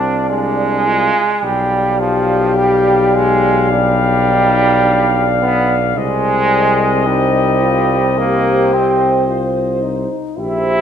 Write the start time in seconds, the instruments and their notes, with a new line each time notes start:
Already playing: tuba C2, euphonium C4, trombone D4, french horn section D5, flugelhorn F5
0.30 trombone G#3, euphonium D4
0.88 euphonium F4
1.43 tuba B1, trombone G3, euphonium G4, french horn section D5, flugelhorn F5
2.00 trombone F3
2.57 trombone G3
3.15 trombone G#3
3.72 trombone G3, euphonium D4
4.29 euphonium D#4
4.84 euphonium D4
5.41 trombone B3
5.96 tuba C2, trombone G#3, euphonium C4, flugelhorn D#5
7.05 trombone G3, euphonium D#4, french horn section C5
7.62 euphonium F4
8.18 trombone A#3, euphonium G4
8.73 trombone C4
9.28 euphonium F4
9.82 euphonium D#4
10.37 tuba A#1, trombone E4, euphonium G4, french horn section C5, flugelhorn E5